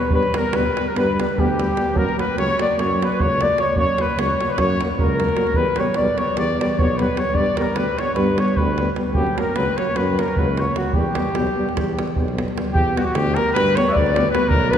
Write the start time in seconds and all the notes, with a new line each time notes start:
Already playing: B4
0.10 G2 G3 B3 B4, davul low
0.23 davul high
0.34 G3 B3 A#4, davul high
0.53 D2 G3 B3 B4, davul high
0.77 G3 B3, davul high
0.88 A#4
0.95 G2 G3 B3 B4, davul high
1.20 G3 B3 B4, davul high
1.29 davul high
1.38 D2 G3 B3 G4, davul low
1.59 G3 B3, davul high
1.77 G3 B3, davul high
1.94 F#2 F#3 A#3 A#4, davul low
1.98 A#4
2.09 davul high
2.17 F#3 A#3 B4, davul high
2.35 C#2 F#3 A#3 C#5, davul high
2.58 F#3 A#3 D5, davul high
2.78 F#2 F#3 A#3 C#5, davul high
3.00 F#3 A#3 B4, davul high
3.05 B4
3.12 davul high
3.18 C#2 F#3 A#3 C#5, davul low
3.40 F#3 A#3 D5, davul high
3.57 F#3 A#3 C#5, davul high
3.74 F#2 F#3 A#3 C#5, davul low
3.79 C#5
3.88 davul high
3.98 F#3 A#3 B4, davul high
4.10 davul high
4.17 C#2 F#3 A#3 C#5, davul high
4.39 F#3 A#3, davul high
4.50 B4, davul high
4.58 F#2 F#3 A#3 C#5, davul high, davul low
4.70 davul high
4.81 F#3 A#3, davul high
4.98 C#2 F#3 A#3 A#4, davul low
5.19 F#3 A#3, davul high
5.28 davul high
5.37 F#3 A#3, davul high
5.47 davul high
5.54 E2 G3 B3 B4, davul low
5.66 davul high
5.76 G3 B3 C#5, davul high
5.81 C#5
5.94 B1 G3 B3 D5, davul high
6.18 G3 B3 C#5, davul high
6.35 E2 G3 B3 D5, davul high
6.59 G3 B3 D5, davul high
6.70 davul high
6.78 B1 G3 B3 C#5, davul low
6.97 G3 B3 B4, davul high
7.02 B4
7.16 G3 B3 C#5, davul high
7.34 G2 G3 B3 D5, davul low
7.46 davul high
7.57 G3 B3 A#4, davul high
7.62 A#4
7.74 D2 G3 B3 B4, davul high
7.98 G3 B3 C#5, davul high
8.14 G2 G3 B3 B4, davul high
8.19 B4
8.38 G3 B3 C#5, davul high
8.48 davul high
8.57 D2 G3 B3 B4, davul low
8.78 G3 B3, davul high
8.96 G3 B3, davul high
9.13 F#2 F#3 A#3 G4, davul low
9.27 davul high
9.36 F#3 A#3 A#4, davul high
9.55 C#2 F#3 A#3 B4, davul high
9.77 F#3 A#3 C#5, davul high
9.95 F#2 F#3 A#3 B4, davul high
10.18 F#3 A#3 A#4, davul high
10.28 davul high
10.37 C#2 F#3 A#3 B4, davul low
10.57 F#3 A#3 C#5, davul high
10.75 F#3 A#3 F#4, davul high
10.93 E2 G3 B3 G4, davul low
11.15 G3 B3, davul high
11.34 B1 G3 B3, davul high
11.47 davul high
11.56 G3 B3
11.69 davul high
11.74 E2 G3 B3, davul high, davul low
11.97 G3 B3, davul high
12.07 davul high
12.15 B1 G3 B3, davul low
12.28 davul high
12.36 G3 B3, davul high
12.48 davul high
12.55 G3 B3, davul high
12.73 E2 G4, davul low
12.96 G3 B3 F#4 G4, davul high
13.01 F#4 G4
13.08 G4, davul high
13.15 D2 G4, davul high
13.27 davul high
13.35 G3 B3 A#4, davul high
13.53 G2 B4, davul high
13.75 G3 B3 C#5, davul high
13.87 E5, davul high
13.92 D5
13.96 D2, davul low
14.06 davul high
14.16 G3 B3, davul high
14.31 G3 B3 B4, davul high
14.49 B1 A#4, davul low
14.70 D4 B4, davul high
14.75 F#3